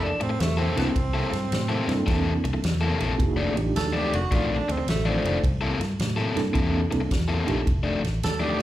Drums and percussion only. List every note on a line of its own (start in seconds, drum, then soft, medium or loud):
0.21 ride medium
0.40 snare loud
0.40 ride medium
0.77 snare soft
0.77 ride medium
0.96 kick loud
0.96 ride medium
1.33 snare soft
1.33 ride medium
1.52 snare loud
1.52 ride medium
1.89 snare soft
1.89 ride medium
2.08 kick medium
2.08 snare soft
2.08 ride medium
2.45 ride medium
2.64 snare loud
2.64 ride medium
3.00 ride medium
3.20 kick loud
3.20 ride medium
3.57 ride medium
3.76 snare loud
3.76 ride medium
4.13 ride medium
4.32 kick loud
4.32 snare soft
4.32 ride medium
4.69 ride medium
4.88 snare loud
4.88 ride medium
5.25 ride medium
5.44 kick loud
5.44 ride medium
5.81 snare soft
5.81 ride medium
5.99 snare loud
5.99 ride medium
6.37 snare soft
6.37 ride medium
6.55 kick loud
6.55 ride medium
6.92 ride medium
7.11 kick medium
7.11 snare loud
7.11 ride medium
7.48 ride medium
7.67 kick loud
7.67 ride medium
8.04 snare soft
8.04 ride medium
8.23 snare loud
8.23 ride medium